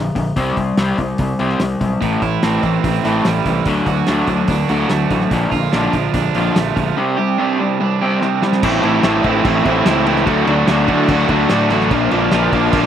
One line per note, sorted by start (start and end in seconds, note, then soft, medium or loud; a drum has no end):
0.00 0.14 A#2 medium
0.00 0.14 D3 medium
0.15 0.31 A#1 medium
0.15 0.34 A#2 medium
0.15 0.35 D3 medium
0.15 kick medium
0.15 open hi-hat medium
0.36 0.51 C2 medium
0.36 0.56 C3 medium
0.36 0.56 G3 medium
0.36 0.56 C4 medium
0.36 kick medium
0.36 open hi-hat medium
0.57 0.71 C2 medium
0.57 0.76 C3 medium
0.57 0.76 G3 medium
0.57 kick medium
0.57 open hi-hat soft
0.77 0.92 C2 medium
0.77 0.97 C3 medium
0.77 0.97 G3 medium
0.77 0.98 C4 medium
0.77 snare medium
0.77 open hi-hat medium
0.98 1.13 C2 medium
0.98 1.17 C3 medium
0.98 1.17 G3 medium
0.98 kick medium
0.98 open hi-hat soft
1.18 1.33 C2 medium
1.18 1.38 C3 medium
1.18 1.38 G3 medium
1.18 kick loud
1.18 open hi-hat medium
1.39 1.54 C2 medium
1.39 1.59 C3 medium
1.39 1.59 G3 medium
1.39 1.59 C4 medium
1.39 open hi-hat soft
1.50 snare soft
1.60 1.75 C2 medium
1.60 1.79 C3 medium
1.60 1.79 G3 medium
1.60 snare medium
1.60 open hi-hat medium
1.81 1.95 B1 medium
1.81 2.00 C3 medium
1.81 2.00 G3 medium
1.81 kick medium
1.81 open hi-hat soft
2.01 2.16 A1 medium
2.01 2.21 A2 medium
2.01 2.21 E3 medium
2.01 2.21 A3 medium
2.01 kick medium
2.01 open hi-hat soft
2.22 2.36 A1 medium
2.22 2.41 A2 medium
2.22 2.41 E3 medium
2.22 3.04 E4 medium
2.22 kick medium
2.22 open hi-hat soft
2.43 2.58 A1 medium
2.43 2.62 A2 medium
2.43 2.62 E3 medium
2.43 2.63 A3 medium
2.43 2.83 C4 medium
2.43 snare medium
2.43 open hi-hat medium
2.63 2.78 A1 medium
2.63 2.82 A2 medium
2.63 2.82 E3 medium
2.63 kick medium
2.63 open hi-hat soft
2.84 2.98 A1 medium
2.84 3.03 A2 medium
2.84 3.03 E3 medium
2.84 3.67 C4 medium
2.84 kick loud
2.84 open hi-hat medium
3.04 3.19 A1 medium
3.04 3.24 A2 medium
3.04 3.24 E3 medium
3.04 3.24 A3 medium
3.04 3.67 E4 medium
3.04 open hi-hat soft
3.25 3.40 A1 medium
3.25 3.44 A2 medium
3.25 3.44 E3 medium
3.25 3.67 G3 medium
3.25 snare medium
3.25 open hi-hat medium
3.45 3.60 C2 medium
3.45 3.65 A2 medium
3.45 3.65 E3 medium
3.45 kick medium
3.45 open hi-hat soft
3.66 3.80 D2 medium
3.66 3.86 D3 medium
3.66 3.86 F#3 medium
3.66 3.86 A3 medium
3.66 kick medium
3.66 open hi-hat medium
3.86 4.01 D2 medium
3.86 4.06 D3 medium
3.86 4.06 F#3 medium
3.86 4.68 F#4 medium
3.86 kick medium
3.86 open hi-hat soft
4.07 4.22 D2 medium
4.07 4.27 D3 medium
4.07 4.28 F#3 medium
4.07 4.28 A3 medium
4.07 4.49 D4 medium
4.07 snare medium
4.07 open hi-hat medium
4.27 4.42 D2 medium
4.27 4.48 D3 medium
4.27 4.48 F#3 medium
4.27 kick medium
4.27 open hi-hat soft
4.48 4.63 D2 medium
4.48 4.68 D3 medium
4.48 4.68 F#3 medium
4.48 5.72 D4 medium
4.48 kick loud
4.48 open hi-hat medium
4.69 4.84 D2 medium
4.69 4.89 D3 medium
4.69 4.89 F#3 medium
4.69 4.90 A3 medium
4.69 5.32 F#4 medium
4.69 open hi-hat soft
4.90 5.05 D2 medium
4.90 5.09 D3 medium
4.90 5.09 F#3 medium
4.90 5.32 A3 medium
4.90 snare medium
4.90 open hi-hat medium
5.10 5.25 A1 medium
5.10 5.30 D3 medium
5.10 5.30 F#3 medium
5.10 kick medium
5.10 open hi-hat soft
5.21 snare soft
5.31 5.46 A#1 medium
5.31 5.51 A#2 medium
5.31 5.52 D3 medium
5.31 5.52 F3 medium
5.31 kick medium
5.31 open hi-hat medium
5.51 5.67 A#1 medium
5.51 5.72 A#2 medium
5.51 5.72 D3 medium
5.51 6.34 F4 medium
5.51 kick medium
5.51 open hi-hat soft
5.72 5.87 A#1 medium
5.72 5.93 A#2 medium
5.72 5.93 D3 medium
5.72 5.93 F3 medium
5.72 6.13 D4 medium
5.72 snare medium
5.72 open hi-hat soft
5.92 6.08 A#1 medium
5.92 6.13 A#2 soft
5.92 6.13 D3 medium
5.92 6.75 F3 medium
5.92 kick medium
5.92 open hi-hat soft
6.14 6.29 A#1 medium
6.14 6.33 A#2 medium
6.14 6.34 D3 medium
6.14 6.97 D4 medium
6.14 kick loud
6.14 open hi-hat medium
6.35 6.50 A#1 medium
6.35 6.55 A#2 medium
6.35 6.55 D3 medium
6.35 6.55 F3 medium
6.35 6.97 F4 medium
6.35 open hi-hat soft
6.55 6.70 A#1 medium
6.55 6.75 A#2 medium
6.55 6.75 D3 medium
6.55 6.97 A3 medium
6.55 snare loud
6.55 open hi-hat medium
6.76 6.91 A#1 medium
6.76 6.95 A#2 medium
6.76 6.95 D3 medium
6.76 6.97 F3 medium
6.76 kick medium
6.76 open hi-hat soft
6.97 7.17 C3 medium
6.97 7.17 G3 medium
6.97 7.17 C4 medium
7.17 7.37 C3 medium
7.17 7.37 G3 medium
7.17 8.00 G4 medium
7.38 7.58 C3 medium
7.38 7.59 G3 medium
7.38 7.59 C4 medium
7.38 7.79 D4 medium
7.60 7.79 C3 medium
7.60 7.79 G3 medium
7.80 7.99 C3 medium
7.80 7.99 G3 medium
7.80 8.63 D4 medium
8.02 8.20 C3 medium
8.02 8.20 G3 medium
8.02 8.21 C4 medium
8.02 8.63 G4 medium
8.22 8.40 C3 medium
8.22 8.40 G3 medium
8.22 8.63 C4 medium
8.22 snare soft
8.42 8.61 C3 medium
8.42 8.61 G3 medium
8.42 snare medium
8.52 snare medium
8.63 8.82 A1 loud
8.63 8.82 A2 loud
8.63 8.83 E3 medium
8.63 8.84 A3 medium
8.63 8.83 C4 loud
8.63 8.84 E4 medium
8.63 10.26 G4 medium
8.63 10.26 C5 medium
8.63 10.26 E5 medium
8.63 10.26 A5 medium
8.63 kick loud
8.63 crash loud
8.63 crash medium
8.83 9.03 A1 medium
8.83 9.02 A2 medium
8.83 9.03 E3 medium
8.83 9.04 A3 medium
8.83 9.04 C4 medium
8.83 9.04 E4 medium
8.83 crash medium
9.03 9.23 A1 medium
9.03 9.23 A2 medium
9.03 9.24 E3 medium
9.03 9.24 A3 medium
9.03 9.24 C4 medium
9.03 9.24 E4 medium
9.03 snare loud
9.03 crash medium
9.24 9.44 A1 medium
9.24 9.44 A2 medium
9.24 9.45 E3 medium
9.24 9.46 A3 medium
9.24 9.45 C4 medium
9.24 9.46 E4 loud
9.24 kick medium
9.24 crash medium
9.45 9.64 A1 medium
9.45 9.64 A2 loud
9.45 9.64 E3 loud
9.45 9.65 A3 loud
9.45 9.65 C4 medium
9.45 9.65 E4 loud
9.45 kick loud
9.45 crash medium
9.65 9.85 A1 medium
9.65 9.85 A2 medium
9.65 9.85 E3 medium
9.65 9.86 A3 medium
9.65 9.86 C4 loud
9.65 9.86 E4 loud
9.65 kick medium
9.65 crash medium
9.86 10.25 C#2 medium
9.86 10.05 A2 medium
9.86 10.06 E3 medium
9.86 10.07 A3 medium
9.86 10.07 C4 medium
9.86 10.07 E4 loud
9.86 snare loud
9.86 crash medium
10.07 10.26 A2 medium
10.07 10.26 E3 loud
10.07 10.28 A3 medium
10.07 10.27 C4 medium
10.07 10.27 E4 loud
10.07 crash medium
10.16 snare soft
10.27 10.46 D2 loud
10.27 10.47 D3 loud
10.27 10.47 F#3 loud
10.27 10.48 A3 loud
10.27 10.49 D4 loud
10.27 10.46 F#4 loud
10.27 11.90 F#4 medium
10.27 11.90 A4 medium
10.27 12.86 D5 medium
10.27 11.90 A5 medium
10.27 kick medium
10.27 crash medium
10.47 10.67 D2 medium
10.47 10.67 D3 medium
10.47 10.68 F#3 medium
10.47 10.69 A3 loud
10.47 10.69 D4 medium
10.47 10.66 F#4 medium
10.47 crash medium
10.68 10.87 D2 medium
10.68 10.88 D3 medium
10.68 10.88 F#3 medium
10.68 10.89 A3 medium
10.68 10.90 D4 medium
10.68 10.87 F#4 medium
10.68 snare loud
10.68 crash medium
10.88 11.08 D3 medium
10.88 11.09 F#3 medium
10.88 11.09 A3 medium
10.88 11.10 D4 medium
10.88 11.08 F#4 medium
10.88 kick medium
10.88 crash medium
11.08 11.28 D2 medium
11.08 11.28 D3 loud
11.08 11.29 F#3 loud
11.08 11.29 A3 loud
11.08 11.30 D4 loud
11.08 11.29 F#4 loud
11.08 kick loud
11.08 crash medium
11.29 11.49 D2 medium
11.29 11.48 D3 loud
11.29 11.49 F#3 medium
11.29 11.49 A3 medium
11.29 11.50 D4 loud
11.29 11.50 F#4 medium
11.29 kick medium
11.29 crash medium
11.49 11.70 A2 medium
11.49 11.69 D3 medium
11.49 11.69 F#3 medium
11.49 11.70 A3 medium
11.49 11.71 D4 loud
11.49 11.71 F#4 medium
11.49 snare loud
11.49 crash medium
11.70 11.90 A1 medium
11.70 11.90 D3 loud
11.70 11.90 F#3 medium
11.70 11.90 A3 medium
11.70 11.93 D4 medium
11.70 11.91 F#4 medium
11.70 snare soft
11.70 crash medium
11.81 snare soft
11.91 12.10 A#1 loud
11.91 12.10 A#2 medium
11.91 12.11 D3 medium
11.91 12.11 F3 loud
11.91 12.11 A#3 loud
11.91 12.12 D4 loud
11.91 12.86 F4 medium
11.91 12.13 F4 loud
11.91 12.86 A#4 medium
11.91 12.86 A5 loud
11.91 kick medium
11.91 crash medium
12.11 12.31 A#1 medium
12.11 12.31 A#2 medium
12.11 12.31 D3 medium
12.11 12.32 F3 loud
12.11 12.32 A#3 medium
12.11 12.33 D4 medium
12.11 12.32 F4 loud
12.11 crash medium
12.31 12.52 A#1 medium
12.31 12.52 A#2 medium
12.31 12.52 D3 medium
12.31 12.52 F3 medium
12.31 12.53 A#3 medium
12.31 12.54 D4 medium
12.31 12.53 F4 medium
12.31 snare loud
12.31 crash medium
12.52 12.72 A#1 medium
12.52 12.73 A#2 medium
12.52 12.73 D3 medium
12.52 12.74 F3 medium
12.52 12.74 A#3 medium
12.52 12.74 D4 medium
12.52 12.73 F4 medium
12.52 kick medium
12.52 crash medium
12.73 12.86 A#1 medium
12.73 12.86 A#2 loud
12.73 12.86 D3 loud
12.73 12.86 F3 loud
12.73 12.86 A#3 loud
12.73 12.86 D4 loud
12.73 12.86 F4 loud
12.73 kick loud
12.73 crash medium